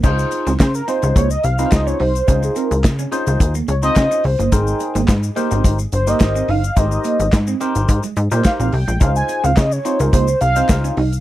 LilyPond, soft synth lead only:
\new Staff \with { instrumentName = "Soft synth lead" } { \time 4/4 \key des \lydian \tempo 4 = 107 r4 c''16 bes'16 c''8 des''16 ees''16 f''8 ees''16 des''16 c''8~ | c''16 aes'16 bes'8 r4. des''16 ees''8. c''8 | aes'4. r4 c''16 ees''8. f''8 | ees''4. r4. f''16 f''16 g''8 |
f''16 aes''8 f''16 ees''16 des''8 bes'16 c''8 f''4 r8 | }